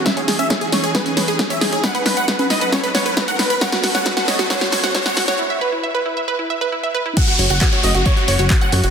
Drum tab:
CC |----------------|----------------|----------------|----------------|
HH |xxoxxxoxxxoxxxox|xxoxxxoxxxoxxxox|xxoxxxoxxxoxxxox|----------------|
CP |----------------|----------------|----------------|----------------|
SD |o-o-o-o-o-o-o-o-|o-o-o-o-o-o-o-o-|oooooooooooooooo|----------------|
CG |----------------|-----o--o-------|----------------|----------------|
BD |o---o---o---o---|o---o---o---o---|o---o---o---o---|----------------|

CC |x---------------|
HH |xxoxxxoxxxoxxxox|
CP |----x-------x---|
SD |----------------|
CG |----------------|
BD |o---o---o---o---|